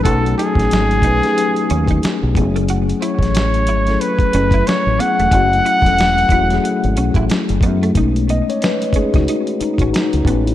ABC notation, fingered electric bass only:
X:1
M:4/4
L:1/16
Q:"Swing 16ths" 1/4=91
K:Bmix
V:1 name="Fingered electric bass" clef=bass
B,,,2 z A,,, G,,,2 B,,, z3 D,,2 z B,,, F,,,2- | F,,,2 z A,,,3 G,,,2 z2 F,,,2 z A,,, z E,,, | F,,,2 z E,,,3 E,,,2 z G,,, B,,, A,,, z F,,, F,,2 | B,,,3 z4 C,, z3 A,,, z C,, A,,,2 |]